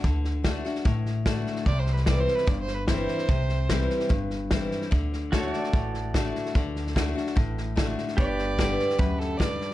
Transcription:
0.04 0.61 D2 medium
0.04 0.43 D3 medium
0.04 kick loud
0.04 snare soft
0.24 snare soft
0.44 0.64 D3 medium
0.44 0.64 A3 medium
0.44 0.64 D4 medium
0.44 0.64 F#4 medium
0.44 kick medium
0.44 snare loud
0.44 hi-hat pedal medium
0.65 0.85 D4 soft
0.65 0.84 F#4 medium
0.65 snare soft
0.75 snare soft
0.85 1.42 A1 medium
0.85 1.62 A2 medium
0.85 kick loud
0.85 snare soft
1.06 snare soft
1.26 1.64 D3 medium
1.26 1.65 A3 medium
1.26 1.65 D4 medium
1.26 1.66 F#4 medium
1.26 kick medium
1.26 snare loud
1.26 hi-hat pedal medium
1.47 snare soft
1.56 snare soft
1.66 2.24 C2 medium
1.66 2.44 C3 medium
1.66 1.80 D5 medium
1.66 kick loud
1.66 snare soft
1.79 1.95 C5 medium
1.86 snare soft
1.93 2.06 B4 medium
1.93 snare soft
2.06 2.45 E3 medium
2.06 2.46 G3 medium
2.06 2.46 C4 medium
2.06 2.46 E4 medium
2.06 2.21 D5 medium
2.06 kick medium
2.06 snare loud
2.06 hi-hat pedal medium
2.20 2.36 C5 medium
2.27 snare soft
2.35 2.50 B4 medium
2.35 snare soft
2.47 3.05 G1 medium
2.47 3.25 G2 medium
2.47 2.60 D5 medium
2.47 kick loud
2.47 snare soft
2.61 2.76 C5 medium
2.67 snare soft
2.74 2.87 B4 medium
2.88 3.27 E3 medium
2.88 3.27 G3 medium
2.88 3.27 C4 medium
2.88 3.27 E4 medium
2.88 4.07 C5 medium
2.88 kick medium
2.88 snare loud
2.88 hi-hat pedal medium
3.08 snare soft
3.18 snare soft
3.28 3.86 C2 medium
3.28 4.06 C3 medium
3.28 kick loud
3.28 snare soft
3.49 snare soft
3.69 4.08 E3 medium
3.69 4.09 G3 medium
3.69 4.09 C4 medium
3.69 4.09 E4 medium
3.69 kick medium
3.69 snare loud
3.69 hi-hat pedal medium
3.90 snare soft
4.00 snare soft
4.09 4.67 G1 medium
4.09 4.87 G2 medium
4.09 kick loud
4.09 snare soft
4.30 snare soft
4.50 4.89 E3 medium
4.50 4.90 G3 medium
4.50 4.90 C4 medium
4.50 4.90 E4 medium
4.50 kick medium
4.50 snare loud
4.50 hi-hat pedal medium
4.71 snare soft
4.81 snare soft
4.91 5.49 D2 medium
4.91 5.31 D3 medium
4.91 kick loud
4.91 snare soft
5.13 snare soft
5.32 5.71 D3 medium
5.32 5.71 A3 medium
5.32 5.71 D4 medium
5.32 8.14 F#4 medium
5.32 5.72 F#4 medium
5.32 8.15 A4 medium
5.32 5.54 C#5 medium
5.32 kick medium
5.32 snare loud
5.32 hi-hat pedal medium
5.53 8.15 D5 medium
5.53 snare soft
5.64 snare soft
5.73 6.31 A1 medium
5.73 6.51 A2 medium
5.73 kick loud
5.73 snare soft
5.94 snare soft
6.14 6.53 D3 medium
6.14 6.53 A3 medium
6.14 6.53 D4 medium
6.14 6.54 F#4 medium
6.14 kick medium
6.14 snare loud
6.14 hi-hat pedal medium
6.35 snare soft
6.46 snare soft
6.55 7.12 D2 medium
6.55 6.94 D3 medium
6.55 kick loud
6.55 snare soft
6.76 snare soft
6.87 snare soft
6.95 7.15 D3 medium
6.95 7.15 A3 medium
6.95 7.15 D4 medium
6.95 7.14 F#4 medium
6.95 kick medium
6.95 snare loud
6.95 hi-hat pedal medium
7.15 7.36 D4 soft
7.15 7.35 F#4 medium
7.15 snare soft
7.27 snare soft
7.36 7.93 A1 medium
7.36 8.13 A2 medium
7.36 kick loud
7.36 snare soft
7.58 snare soft
7.76 8.15 D3 medium
7.76 8.15 A3 medium
7.76 8.15 D4 medium
7.76 8.15 F#4 medium
7.76 kick medium
7.76 snare loud
7.76 hi-hat pedal medium
7.98 snare soft
8.08 snare soft
8.17 8.75 G1 medium
8.17 8.94 G2 medium
8.17 9.74 G4 medium
8.17 9.74 B4 medium
8.17 9.00 D5 loud
8.17 9.74 D5 medium
8.17 kick loud
8.17 snare soft
8.39 snare soft
8.58 8.96 D3 medium
8.58 8.97 G3 medium
8.58 8.97 B3 medium
8.58 8.98 G4 medium
8.58 kick medium
8.58 snare loud
8.58 hi-hat pedal medium
8.79 snare soft
8.90 snare soft
8.99 9.56 D2 medium
8.99 9.37 F#2 medium
8.99 9.20 B4 medium
8.99 kick loud
8.99 snare soft
9.18 9.39 A4 medium
9.18 snare soft
9.38 9.74 G2 medium
9.38 9.74 D5 medium
9.38 kick medium
9.38 snare loud
9.38 hi-hat pedal medium
9.61 snare soft

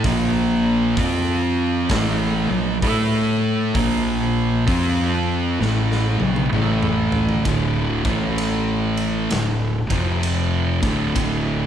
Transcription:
0.04 0.93 A#1 loud
0.04 0.96 A#2 loud
0.04 0.96 F3 loud
0.04 0.97 A#3 loud
0.04 kick loud
0.04 open hi-hat medium
0.97 1.86 F2 loud
0.97 1.89 F3 loud
0.97 1.89 C4 loud
0.97 1.89 F4 loud
0.97 kick loud
0.97 open hi-hat medium
1.89 2.46 A1 medium
1.89 2.48 A2 medium
1.89 2.48 E3 loud
1.89 2.49 A3 loud
1.89 kick loud
1.89 snare loud
1.89 open hi-hat medium
2.50 2.81 A#1 medium
2.50 2.76 B2 medium
2.50 2.77 F#3 medium
2.82 3.71 A2 loud
2.82 3.74 A3 medium
2.82 3.74 E4 medium
2.82 3.75 A4 loud
2.82 kick loud
2.82 open hi-hat medium
3.75 4.64 A#1 medium
3.75 4.67 A#2 loud
3.75 4.67 F3 loud
3.75 4.67 A#3 loud
3.75 kick loud
3.75 open hi-hat medium
4.67 5.56 F2 loud
4.67 5.59 F3 loud
4.67 5.60 C4 loud
4.67 5.60 F4 loud
4.67 kick loud
4.67 open hi-hat medium
5.60 6.16 A1 medium
5.60 6.18 A2 medium
5.60 6.19 E3 medium
5.60 6.19 A3 loud
5.60 snare medium
5.92 snare medium
6.20 6.51 A#1 medium
6.20 6.47 B2 medium
6.20 6.47 F#3 medium
6.20 high tom medium
6.36 high tom medium
6.53 7.41 A1 medium
6.53 7.45 A2 medium
6.53 7.45 E3 medium
6.53 7.45 A3 loud
6.53 mid tom medium
6.83 mid tom medium
7.12 floor tom loud
7.29 floor tom loud
7.45 8.01 D1 loud
7.45 8.03 D2 medium
7.45 8.04 A2 loud
7.45 8.04 D3 loud
7.45 kick loud
7.45 ride medium
8.05 9.27 A1 medium
8.05 9.29 A2 loud
8.05 9.30 E3 loud
8.05 9.30 A3 loud
8.05 kick loud
8.05 ride medium
8.38 ride medium
8.97 ride medium
9.30 9.87 D1 medium
9.30 9.79 D2 medium
9.30 9.79 A2 medium
9.30 snare loud
9.30 ride medium
9.90 10.79 F1 loud
9.90 10.81 F2 medium
9.90 10.81 C3 loud
9.90 10.81 F3 medium
9.90 kick medium
9.90 ride medium
10.23 ride medium
10.83 11.14 D1 loud
10.83 11.14 D2 medium
10.83 11.15 A2 loud
10.83 11.15 D3 loud
10.83 kick loud
10.83 snare soft
10.83 ride medium
11.15 11.66 D1 loud
11.15 11.66 D2 loud
11.15 11.66 A2 loud
11.15 11.66 D3 loud
11.15 kick loud
11.15 ride loud

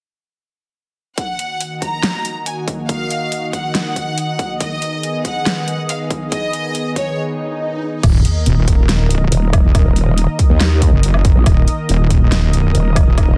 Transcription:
1.18 7.99 D#3 medium
1.18 4.57 A#3 medium
1.18 4.57 F#4 medium
1.18 7.99 D#5 medium
1.18 1.73 F#5 medium
1.18 kick loud
1.18 closed hi-hat medium
1.39 closed hi-hat soft
1.61 closed hi-hat medium
1.82 2.38 A#5 medium
1.82 kick medium
1.82 closed hi-hat soft
2.03 snare loud
2.03 closed hi-hat medium
2.25 closed hi-hat soft
2.46 2.54 G#5 medium
2.46 closed hi-hat medium
2.68 kick medium
2.68 closed hi-hat soft
2.89 3.45 F5 medium
2.89 kick loud
2.89 closed hi-hat medium
3.10 closed hi-hat soft
3.32 closed hi-hat medium
3.53 4.52 F#5 medium
3.53 kick medium
3.53 closed hi-hat soft
3.75 snare loud
3.75 closed hi-hat medium
3.96 kick medium
3.96 closed hi-hat medium
4.18 closed hi-hat medium
4.39 kick loud
4.39 closed hi-hat soft
4.60 8.00 B3 medium
4.60 8.00 G#4 medium
4.60 5.16 D#5 medium
4.60 kick loud
4.60 closed hi-hat medium
4.82 closed hi-hat soft
5.03 closed hi-hat medium
5.25 5.81 F#5 medium
5.25 kick medium
5.25 closed hi-hat soft
5.46 snare loud
5.46 closed hi-hat medium
5.68 closed hi-hat soft
5.89 5.97 F5 medium
5.89 closed hi-hat medium
6.11 kick loud
6.11 closed hi-hat soft
6.32 6.88 D#5 medium
6.32 kick loud
6.32 closed hi-hat medium
6.53 closed hi-hat soft
6.75 closed hi-hat medium
6.96 7.18 C#5 medium
6.96 kick medium
6.96 closed hi-hat soft
7.18 swell medium
8.03 8.23 D#1 loud
8.03 13.38 D#3 medium
8.03 13.38 A#3 medium
8.03 13.38 A#4 medium
8.03 13.38 D#5 medium
8.03 kick loud
8.03 closed hi-hat medium
8.03 crash loud
8.03 sub drop medium
8.03 low woodblock medium
8.25 closed hi-hat medium
8.46 9.30 D#1 medium
8.46 closed hi-hat medium
8.68 kick medium
8.68 closed hi-hat medium
8.89 snare loud
8.89 closed hi-hat medium
9.11 closed hi-hat medium
9.32 9.62 D#1 medium
9.32 closed hi-hat medium
9.53 kick loud
9.53 closed hi-hat medium
9.53 low woodblock medium
9.64 9.84 D#1 loud
9.75 kick loud
9.75 closed hi-hat medium
9.75 low woodblock medium
9.86 10.27 D#1 loud
9.96 closed hi-hat medium
10.18 closed hi-hat medium
10.39 kick medium
10.39 closed hi-hat medium
10.50 10.91 D#2 loud
10.60 snare loud
10.60 closed hi-hat medium
10.82 kick medium
10.82 closed hi-hat medium
10.93 11.34 F#1 medium
11.03 closed hi-hat medium
11.14 low woodblock medium
11.25 kick loud
11.25 closed hi-hat medium
11.35 11.44 A#1 loud
11.46 11.66 D#1 loud
11.46 kick loud
11.46 closed hi-hat medium
11.46 low woodblock soft
11.68 closed hi-hat medium
11.89 12.73 D#1 medium
11.89 closed hi-hat medium
12.10 kick medium
12.10 closed hi-hat medium
12.32 snare loud
12.32 closed hi-hat medium
12.53 closed hi-hat medium
12.75 13.05 D#1 medium
12.75 closed hi-hat medium
12.96 kick loud
12.96 closed hi-hat medium
12.96 low woodblock medium
13.07 13.27 D#1 loud
13.18 kick loud
13.18 closed hi-hat medium
13.18 low woodblock medium
13.28 13.38 D#1 loud

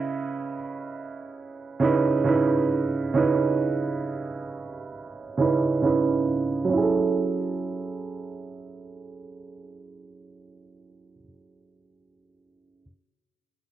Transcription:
0.00 0.55 C#3 medium
0.00 0.55 C#4 medium
0.00 0.56 E4 medium
0.00 0.57 B4 medium
0.00 0.56 D#5 medium
0.00 6.75 E5 medium
1.80 2.08 C#3 medium
1.80 2.09 C#4 medium
1.80 2.09 D#4 medium
1.80 2.10 E4 medium
1.84 2.10 B4 medium
2.24 2.81 C#3 medium
2.24 2.81 C#4 medium
2.24 2.82 D#4 medium
2.24 2.82 E4 medium
2.28 2.83 B4 medium
3.14 4.26 C#3 medium
3.14 4.27 C#4 medium
3.14 4.27 D#4 medium
3.14 4.28 E4 medium
3.18 4.28 B4 medium
5.37 5.66 C#3 medium
5.37 5.67 C#4 medium
5.37 5.67 D#4 medium
5.37 5.68 E4 medium
5.42 5.68 B4 medium
5.82 6.39 C#3 medium
5.82 6.39 C#4 medium
5.82 6.40 D#4 medium
5.82 6.40 E4 medium
5.86 6.41 B4 medium
6.65 11.11 F#3 medium
6.69 11.15 C#4 medium
6.73 11.19 E4 medium
6.78 11.23 G#4 medium
6.82 11.28 A4 medium

